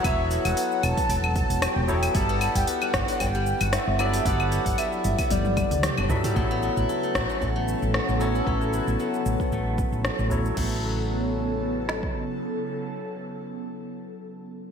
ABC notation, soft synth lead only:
X:1
M:4/4
L:1/16
Q:"Swing 16ths" 1/4=114
K:Amix
V:1 name="Soft synth lead"
e3 f3 a6 g4 | a3 g f4 g3 f e4 | f4 e4 d4 z4 | z16 |
z16 | z16 | z16 |]